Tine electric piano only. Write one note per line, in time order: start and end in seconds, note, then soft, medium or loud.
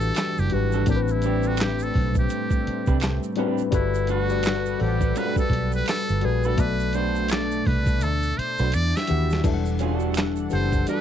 0.00 0.51 E3 medium
0.00 0.52 D4 medium
0.00 0.52 F#4 medium
0.00 0.53 G4 medium
0.00 0.89 A4 loud
0.00 0.54 B4 medium
0.51 0.81 E3 medium
0.51 0.82 D4 medium
0.51 0.82 F#4 medium
0.51 0.82 G4 medium
0.51 0.83 B4 medium
0.86 2.03 A2 medium
0.86 2.04 G3 medium
0.86 2.04 C4 medium
0.86 2.04 D4 medium
0.86 0.96 A#4 medium
0.96 2.08 B4 loud
3.36 3.67 A2 medium
3.36 3.67 G3 medium
3.36 3.68 C4 medium
3.36 3.68 D4 medium
3.36 3.68 B4 medium
3.71 4.17 G3 medium
3.71 4.17 F#4 medium
3.71 4.18 A4 medium
3.71 4.18 B4 loud
4.29 4.71 G3 medium
4.29 4.71 F#4 medium
4.29 4.72 A4 medium
4.29 4.72 D5 medium
4.79 5.96 G3 medium
4.79 5.97 A4 medium
4.79 4.89 C5 medium
4.79 5.96 F#5 medium
4.88 6.01 D5 medium
6.22 6.53 G3 medium
6.22 6.53 F#4 medium
6.22 6.54 A4 medium
6.22 6.54 B4 medium
6.57 7.74 B2 loud
6.57 7.75 A3 medium
6.57 7.75 A4 medium
6.57 7.76 D5 loud
9.08 9.38 E3 medium
9.08 9.39 D4 medium
9.08 9.39 G4 medium
9.08 9.40 F#5 medium
9.44 10.33 E3 medium
9.44 10.34 G3 medium
9.44 10.34 D4 medium
9.44 10.34 A4 medium
9.44 9.53 E5 medium
9.54 10.38 F#5 loud
10.50 11.01 E3 medium
10.50 11.01 D4 medium
10.50 11.01 G4 medium
10.50 11.01 A4 medium
10.50 11.01 F#5 medium